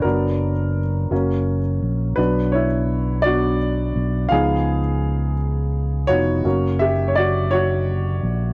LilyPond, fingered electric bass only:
\new Staff \with { instrumentName = "Fingered electric bass" } { \clef bass \time 6/8 \key b \minor \tempo 4. = 56 fis,,4. fis,,4 ais,,8 | b,,2~ b,,8 b,,8 | cis,2~ cis,8 eis,,8 | fis,,2~ fis,,8 ais,,8 | }